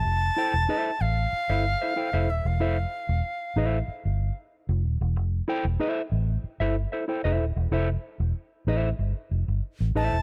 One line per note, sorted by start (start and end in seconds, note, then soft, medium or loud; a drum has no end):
0.00 1.03 A5 loud
0.05 0.29 F1 medium
0.36 0.53 E4 medium
0.36 0.53 A4 medium
0.36 0.53 C5 medium
0.36 0.54 G5 medium
0.54 0.65 E1 medium
0.69 0.90 E4 medium
0.69 0.90 A4 medium
0.69 0.90 C5 medium
0.69 0.90 E5 loud
1.01 1.25 A1 medium
1.01 2.31 F5 loud
1.33 muted fingered electric bass stroke medium
1.49 1.74 G1 medium
1.49 1.65 E4 medium
1.49 1.64 A4 medium
1.49 1.64 C5 medium
1.49 1.64 E5 medium
1.81 1.93 E4 medium
1.81 1.93 A4 medium
1.81 1.93 C5 medium
1.81 1.93 E5 medium
1.96 2.09 E4 medium
1.96 2.09 A4 medium
1.96 2.10 C5 medium
1.96 2.10 G5 medium
2.13 2.28 F1 loud
2.13 2.28 E4 medium
2.13 2.28 A4 medium
2.13 2.28 C5 medium
2.13 2.28 E5 medium
2.28 2.41 D#1 medium
2.28 2.48 E5 medium
2.45 2.60 E1 medium
2.45 4.38 F5 medium
2.60 2.84 F1 medium
2.60 2.76 E4 medium
2.60 2.77 A4 medium
2.60 2.77 C5 medium
2.60 2.77 E5 medium
3.09 3.20 E1 medium
3.56 3.80 A1 medium
3.56 3.77 E4 medium
3.56 3.78 A4 medium
3.56 3.78 C5 medium
3.56 3.78 E5 loud
3.88 muted fingered electric bass stroke soft
4.05 4.29 G1 medium
4.69 4.84 F1 loud
4.84 4.97 D#1 medium
5.01 5.16 E1 loud
5.16 5.40 F1 loud
5.48 5.64 E4 medium
5.48 5.64 A4 medium
5.48 5.65 C5 medium
5.48 5.65 G5 loud
5.65 5.76 E1 medium
5.80 6.01 E4 medium
5.80 6.01 A4 medium
5.80 6.01 C5 medium
5.80 6.01 E5 loud
6.12 6.36 A1 medium
6.44 muted fingered electric bass stroke soft
6.60 6.84 G1 medium
6.60 6.75 E4 medium
6.60 6.75 A4 medium
6.60 6.75 C5 medium
6.60 6.75 E5 medium
6.92 7.04 E4 medium
6.92 7.04 A4 medium
6.92 7.04 C5 medium
6.92 7.04 E5 medium
7.08 7.20 E4 medium
7.08 7.21 A4 medium
7.08 7.21 C5 medium
7.08 7.21 G5 medium
7.24 7.40 F1 loud
7.24 7.45 E4 medium
7.24 7.45 A4 medium
7.24 7.44 C5 medium
7.24 7.44 E5 medium
7.40 7.52 D#1 medium
7.56 7.68 E1 medium
7.71 7.96 F1 medium
7.71 7.88 E4 medium
7.71 7.88 A4 medium
7.71 7.88 C5 medium
7.71 7.89 E5 medium
8.20 8.31 E1 medium
8.67 8.91 A1 medium
8.67 8.89 E4 medium
8.67 8.89 A4 medium
8.67 8.89 C5 loud
8.67 8.89 E5 loud
8.99 9.12 G1 loud
9.31 9.44 F1 medium
9.48 9.59 G1 medium
9.80 9.92 A1 medium
9.95 10.08 A1 medium
9.95 10.16 E4 medium
9.95 10.16 A4 medium
9.95 10.17 C5 medium
9.95 10.17 E5 loud
9.95 10.22 A5 loud
10.12 10.22 E1 medium